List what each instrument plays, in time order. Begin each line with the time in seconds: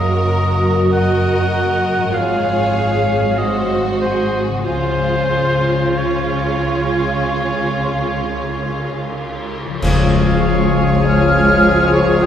Already playing: double bass section F#1, cello section F#2, harp F#2 F#3 A#3 A#4, viola section F#4, violin section A#4, oboe D#5
0.92 violin section A#4 D#5, oboe F#5
1.96 harp G#2
2.00 harp F3
2.05 harp C#4
2.09 harp G#4
2.13 double bass section G#1, cello section G#2, viola section F4, violin section G#4 C#5, oboe F5
2.75 viola section G#4
3.20 harp G#2
3.25 harp F#3
3.29 harp C4
3.34 harp G#4
3.38 viola section F#4, violin section F#4 C5, oboe D#5
4.01 violin section G#4, oboe C5
4.48 harp C#3
4.52 harp F3
4.57 harp C#4
4.61 cello section C#3, viola section F4, harp G#4, oboe C5
4.66 double bass section C#2, violin section F4 G#4
5.96 violin section F4 G#4, oboe C#5
9.65 harp C#3
9.70 harp F3
9.75 harp C#4
9.79 bassoon F3, french horn section F3, viola section F4, harp G#4, violin section C#5, flute section C#6, concert bass drum, crash
9.83 double bass section C#2, cello section C#2, timpani C#3, french horn section G#4, violin section G#4, oboe G#4, clarinet F5
11.05 clarinet C#5, flute section F6
11.93 flute section C#6
12.22 flute section D#6